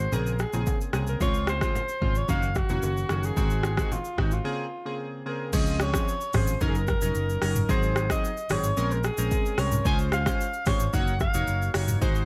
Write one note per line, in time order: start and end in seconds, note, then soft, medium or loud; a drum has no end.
0.00 0.15 C5 medium
0.12 0.44 A#1 loud
0.12 0.33 C#3 medium
0.12 0.33 A#3 medium
0.12 0.33 C4 medium
0.12 0.33 G#4 loud
0.12 0.40 A#4 medium
0.12 low conga medium
0.12 shaker medium
0.27 shaker soft
0.39 0.78 G#4 medium
0.39 cross-stick medium
0.39 shaker medium
0.53 0.63 A#1 medium
0.53 0.90 C#3 medium
0.53 0.90 A#3 medium
0.53 0.90 C4 medium
0.53 0.91 G#4 medium
0.53 low bongo medium
0.53 shaker medium
0.66 kick medium
0.66 high bongo medium
0.66 shaker medium
0.81 shaker medium
0.93 1.14 C2 medium
0.93 1.18 C#3 medium
0.93 1.18 A#3 medium
0.93 1.19 C4 medium
0.93 1.19 G#4 medium
0.93 cross-stick medium
0.93 high bongo medium
0.93 shaker soft
1.07 1.20 A#4 medium
1.07 shaker medium
1.20 1.62 C#2 loud
1.20 1.58 C#3 medium
1.20 1.58 G#3 medium
1.20 1.58 C4 medium
1.20 1.58 F4 loud
1.20 1.47 C#5 loud
1.20 kick loud
1.20 low conga medium
1.20 shaker medium
1.34 shaker soft
1.47 2.19 C5 loud
1.47 cross-stick loud
1.47 low bongo medium
1.47 shaker medium
1.61 1.82 C#3 medium
1.61 1.82 G#3 medium
1.61 1.82 C4 medium
1.61 1.82 F4 medium
1.61 kick loud
1.61 cross-stick medium
1.61 shaker medium
1.75 high bongo medium
1.75 low conga medium
1.75 shaker medium
1.89 shaker medium
2.01 2.22 G#1 medium
2.01 2.22 C#3 medium
2.01 2.22 G#3 medium
2.01 2.22 C4 medium
2.01 2.22 F4 medium
2.01 kick loud
2.15 2.29 C#5 medium
2.15 shaker medium
2.28 2.60 F#1 loud
2.28 2.49 D#3 medium
2.28 2.49 A#3 medium
2.28 2.49 C#4 medium
2.28 2.49 F#4 loud
2.28 2.58 F5 loud
2.28 kick medium
2.28 low conga medium
2.28 shaker medium
2.43 shaker soft
2.55 3.26 F#4 loud
2.55 kick loud
2.55 cross-stick medium
2.55 shaker medium
2.69 2.80 F1 medium
2.69 3.06 D#3 medium
2.69 3.07 A#3 medium
2.69 3.07 C#4 medium
2.69 3.07 F#4 medium
2.69 low bongo medium
2.69 shaker medium
2.83 3.03 F#1 medium
2.83 high bongo medium
2.83 shaker medium
2.97 shaker medium
3.09 3.30 F#1 medium
3.09 3.35 D#3 medium
3.09 3.35 A#3 medium
3.09 3.35 C#4 medium
3.09 3.35 F#4 medium
3.09 cross-stick medium
3.09 high bongo medium
3.09 shaker soft
3.23 3.93 G#4 loud
3.23 shaker medium
3.37 3.78 G#1 loud
3.37 3.74 D#3 medium
3.37 3.74 G#3 medium
3.37 3.75 C4 medium
3.37 3.75 F#4 loud
3.37 kick loud
3.37 low conga medium
3.37 shaker medium
3.50 shaker soft
3.63 cross-stick medium
3.63 low bongo medium
3.63 shaker medium
3.77 3.98 D#3 medium
3.77 3.98 G#3 medium
3.77 3.98 C4 medium
3.77 3.98 F#4 medium
3.77 kick medium
3.77 cross-stick medium
3.77 shaker medium
3.92 4.21 F4 medium
3.92 high bongo medium
3.92 low conga medium
3.92 shaker medium
4.05 shaker medium
4.17 4.39 G#1 medium
4.17 4.38 D#3 medium
4.17 4.38 G#3 medium
4.17 4.38 C4 medium
4.17 4.35 D#4 medium
4.17 4.38 F#4 medium
4.17 kick loud
4.17 cross-stick loud
4.31 5.00 F4 medium
4.31 shaker medium
4.44 4.65 C#3 loud
4.44 4.65 A#3 medium
4.44 4.65 C4 medium
4.44 4.65 G#4 loud
4.85 5.23 C#3 medium
4.85 5.23 A#3 medium
4.85 5.23 C4 medium
4.85 5.23 G#4 medium
5.26 5.51 C#3 medium
5.26 5.51 A#3 medium
5.26 5.51 C4 medium
5.26 5.51 G#4 medium
5.26 5.56 A#4 medium
5.53 5.95 C#2 loud
5.53 5.91 F3 loud
5.53 5.91 C4 medium
5.53 5.91 C#4 medium
5.53 5.91 G#4 loud
5.53 5.83 D#5 loud
5.53 kick loud
5.53 crash loud
5.53 shaker medium
5.67 shaker medium
5.80 6.37 C#5 medium
5.80 cross-stick loud
5.80 shaker medium
5.94 6.14 F3 medium
5.94 6.14 C4 medium
5.94 6.14 C#4 medium
5.94 6.14 G#4 medium
5.94 kick loud
5.94 cross-stick loud
5.94 shaker loud
6.08 shaker medium
6.21 shaker medium
6.33 6.55 G#1 medium
6.33 6.54 F3 medium
6.33 6.55 C4 medium
6.33 6.55 C#4 medium
6.33 6.55 G#4 medium
6.33 6.62 C5 medium
6.33 kick loud
6.33 cross-stick loud
6.33 mid tom loud
6.33 open hi-hat medium
6.33 shaker medium
6.47 shaker loud
6.61 6.93 F#1 loud
6.61 6.81 F#3 loud
6.61 6.82 C#4 medium
6.61 6.82 D#4 medium
6.61 6.82 A#4 loud
6.61 6.70 A#4 medium
6.61 kick medium
6.61 shaker medium
6.69 6.78 G#4 medium
6.75 6.89 A#4 medium
6.75 shaker medium
6.87 7.66 A#4 medium
6.87 kick loud
6.87 cross-stick medium
6.87 shaker medium
7.01 7.12 F1 medium
7.01 7.39 F#3 medium
7.01 7.39 C#4 medium
7.01 7.39 D#4 medium
7.01 7.39 A#4 medium
7.01 shaker loud
7.15 7.36 F#1 medium
7.15 shaker medium
7.30 shaker medium
7.42 7.63 F#1 loud
7.42 7.67 F#3 medium
7.42 7.67 C#4 medium
7.42 7.67 D#4 medium
7.42 7.67 A#4 medium
7.42 cross-stick medium
7.42 open hi-hat medium
7.42 shaker soft
7.56 mid tom loud
7.56 shaker loud
7.69 8.11 G#1 loud
7.69 8.07 F#3 loud
7.69 8.07 C4 medium
7.69 8.07 D#4 medium
7.69 8.07 G#4 loud
7.69 8.08 C5 loud
7.69 kick loud
7.69 shaker medium
7.83 shaker medium
7.96 cross-stick loud
7.96 shaker medium
8.10 8.30 F#3 medium
8.10 8.30 C4 medium
8.10 8.30 D#4 medium
8.10 8.30 G#4 medium
8.10 8.53 D#5 loud
8.10 kick loud
8.10 cross-stick loud
8.10 shaker medium
8.25 shaker medium
8.37 shaker medium
8.49 8.71 G#1 medium
8.49 8.71 F#3 medium
8.49 8.71 C4 medium
8.49 8.71 D#4 medium
8.49 8.71 G#4 medium
8.49 8.94 C#5 loud
8.49 cross-stick loud
8.49 mid tom loud
8.49 open hi-hat medium
8.49 shaker medium
8.64 shaker loud
8.77 9.09 A#1 loud
8.77 8.98 G#3 loud
8.77 8.98 C4 medium
8.77 8.98 C#4 medium
8.77 8.98 A#4 loud
8.77 shaker medium
8.91 9.07 A#4 medium
8.91 shaker medium
9.04 9.61 G#4 loud
9.04 cross-stick medium
9.04 shaker medium
9.18 9.28 A#1 medium
9.18 9.55 G#3 medium
9.18 9.55 C4 medium
9.18 9.55 C#4 medium
9.18 9.55 A#4 medium
9.18 shaker loud
9.31 kick loud
9.31 shaker medium
9.46 shaker medium
9.58 9.79 C2 medium
9.58 9.83 G#3 medium
9.58 9.83 C4 medium
9.58 9.83 C#4 medium
9.58 9.83 A#4 medium
9.58 9.86 C#5 loud
9.58 cross-stick medium
9.58 open hi-hat medium
9.58 shaker soft
9.72 mid tom loud
9.72 shaker loud
9.85 10.27 C#2 loud
9.85 10.23 G#3 loud
9.85 10.23 C#4 medium
9.85 10.23 F4 medium
9.85 10.23 C5 loud
9.85 9.99 G#5 loud
9.85 kick loud
9.85 shaker medium
9.99 shaker medium
10.12 10.63 F5 loud
10.12 cross-stick loud
10.12 shaker medium
10.26 10.46 G#3 medium
10.26 10.46 C#4 medium
10.26 10.46 F4 medium
10.26 10.47 C5 medium
10.26 kick loud
10.26 cross-stick loud
10.26 shaker medium
10.41 shaker medium
10.54 shaker medium
10.66 10.87 G#1 medium
10.66 10.87 G#3 medium
10.66 10.87 C#4 medium
10.66 10.87 F4 medium
10.66 10.87 C5 medium
10.66 10.96 C#5 loud
10.66 kick loud
10.66 cross-stick loud
10.66 mid tom loud
10.66 open hi-hat medium
10.66 shaker medium
10.80 shaker loud
10.93 11.25 F#1 loud
10.93 11.14 A#3 loud
10.93 11.14 D#4 medium
10.93 11.14 F#4 medium
10.93 11.14 C#5 loud
10.93 11.21 F#5 loud
10.93 kick medium
10.93 shaker medium
11.07 shaker medium
11.20 11.71 F5 loud
11.20 kick loud
11.20 cross-stick medium
11.20 shaker medium
11.34 11.45 F1 medium
11.34 11.71 A#3 medium
11.34 11.71 D#4 medium
11.34 11.72 F#4 medium
11.34 11.72 C#5 medium
11.34 shaker loud
11.47 11.68 F#1 medium
11.47 shaker medium
11.62 shaker medium
11.74 11.95 F#1 loud
11.74 11.99 A#3 medium
11.74 11.99 D#4 medium
11.74 12.00 F#4 medium
11.74 12.00 C#5 medium
11.74 cross-stick loud
11.74 open hi-hat medium
11.74 shaker soft
11.88 mid tom loud
11.88 shaker loud
12.01 12.25 G#1 loud
12.01 12.25 G#3 medium
12.01 12.25 D#4 medium
12.01 12.25 F#4 medium
12.01 12.25 C5 loud
12.01 kick loud
12.01 shaker medium
12.15 shaker soft